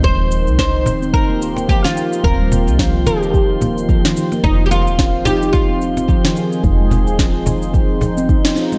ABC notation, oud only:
X:1
M:4/4
L:1/16
Q:"Swing 16ths" 1/4=109
K:Fm
V:1 name="Oud"
c4 c4 B4 G F3 | B6 G8 z2 | E3/2 G/2 F4 G2 F8- | F12 z4 |]